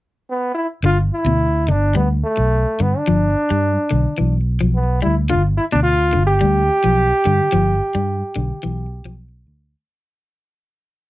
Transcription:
0.30 B3
0.54 E4
0.83 G1 D3 F4
1.13 E4
1.25 D2 B2
1.68 G1 D3 D4
1.95 D2 G3 B3
2.24 A3
2.37 B1, muted clean electric guitar stroke
2.80 G2 D3 B3
2.98 D4
3.08 G1 F3
3.50 G2 G3
3.91 B1 D3
4.18 B1 E3
4.61 B1 F3
4.75 B3
5.02 D2 G3 E4
5.30 G1 D3 F4
5.57 E4
5.72 D2 B2 D4
5.83 F4
6.13 G1 D3
6.26 G4
6.41 D2 G3
6.84 B1 F3
7.25 G2 D3
7.52 G1 F3
7.95 G2 G3
8.36 B1 D3
8.63 B1 E3
9.05 B1 F3
9.47 D2

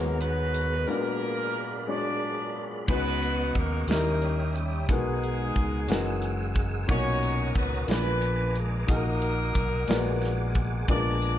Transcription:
Already playing: D#2 G#2 G#3 A#3 B3 D#4 F#4 G#4 A#4 C#5 A#5
0.20 B3 D#4 F#4 B4, closed hi-hat
0.54 closed hi-hat, tambourine
0.87 A#2 F#3 G#3 A#3 B3 D4 F4 G#4 A#4 D5 B5
1.86 F#3 G#3 D4 F4 G#4 C#5 D5
1.96 D5
2.87 C#2 C#3 G#3 B3 C#4 D#4 F#4 B4 D#5 F#5 C#6, kick, crash
3.22 closed hi-hat
3.55 D#2 A#3 A#4, kick, closed hi-hat
3.87 D#2 D#3 G3 A#3 C#4 D#4 E4 G4 A#4 C#5 E5 G5 D#6, snare, closed hi-hat
4.22 closed hi-hat
4.56 G3 G4, closed hi-hat
4.88 B1 B2 G#3 B3 D#4 F#4 G#4 A#4 F#5 G#5, kick, closed hi-hat
5.23 closed hi-hat
5.55 C#2, kick, closed hi-hat
5.87 F#1 E3 G#3 C#4 F#4 A#4 F#5 E6, closed hi-hat
5.92 snare
6.22 closed hi-hat
6.55 kick, closed hi-hat
6.88 B1 A#2 B2 C#4 D#4 F#4 A#4 C#5 F#5 A#5 D#6, kick, closed hi-hat
7.23 closed hi-hat
7.55 C#2 B3 B4, kick, closed hi-hat
7.87 A#1 A#2 A#3 D4 F4 G#4 B4 G#5 A#5 D6, closed hi-hat
7.91 B3 B4, snare
8.21 closed hi-hat
8.55 G#3 G#4, closed hi-hat
8.87 A#1 A#2 A#3 D#4 F#4 G#4 A#4 D#5 F#5 D#6, kick, closed hi-hat
8.96 A#4
9.22 closed hi-hat
9.55 B1, kick, closed hi-hat
9.88 A#1 A#2 G#3 B3 F#4 G#4 A#4 D5 G#5 D6, snare, closed hi-hat
10.21 snare, closed hi-hat
10.55 kick, closed hi-hat
10.88 A#1 A#2 G#3 B3 D4 F4 G#4 A#4 D5 A#5, kick, closed hi-hat
11.21 closed hi-hat, tambourine

